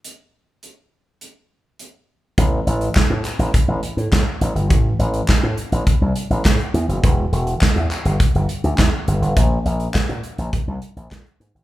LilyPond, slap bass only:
\new Staff \with { instrumentName = "Slap bass" } { \clef bass \time 4/4 \key e \minor \tempo 4 = 103 r1 | a,,8 a,,8 r16 a,16 r16 a,,16 r16 a,,16 r16 a,16 a,16 r16 a,,16 g,,16 | a,,8 a,,8 r16 a,16 r16 a,,16 r16 c,16 r16 a,,16 a,16 r16 e,16 fis,,16 | e,,8 e,,8 r16 e,16 r16 g,,16 r16 g,,16 r16 d,16 e,16 r16 g,,16 g,,16 |
bes,,8 bes,,8 r16 bes,16 r16 bes,,16 r16 c,16 r16 bes,,16 bes,16 r16 gis,16 gis,,16 | }